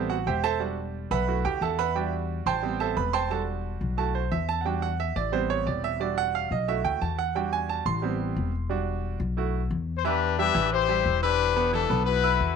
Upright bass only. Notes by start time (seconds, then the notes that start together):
Already playing: A1
0.27 E1
1.11 B1
1.45 D2
1.61 E2
2.46 A1
2.97 E1
3.81 B1
4.32 E2
5.16 A1
5.66 E1
6.51 B1
6.85 D2
7.01 E2
7.86 A1
8.36 E1
9.20 B1
9.71 E2
10.55 A1
11.06 E1
11.90 B1
12.40 E2